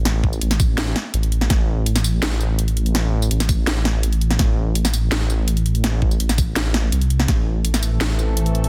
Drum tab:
HH |x---x---x---xxxx|x---x---x---xxxx|x---x---x---xxxx|x---x---x---xxxx|
TB |---x-xx---------|-----xx---x-----|---x-xx---------|-----xx---x-----|
SD |o----o--o-o----o|o----o--o-------|o----o--o-o----o|o----o--o-------|
BD |--o---o---------|o---------------|------o---------|o---------------|

HH |x---x---x---xxxx|x---x---x---xxxx|
TB |---x-xx---------|-----xx---x-----|
SD |o----o--o-o----o|o----o--o-------|
BD |--o---o---------|o---------------|